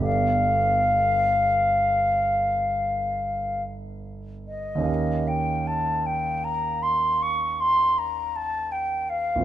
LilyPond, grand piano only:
\new Staff \with { instrumentName = "Grand piano" } { \time 12/8 \key g \dorian \tempo 4. = 51 <g,, b g' a' d''>1. | <ees, des' g' bes' f''>1. | }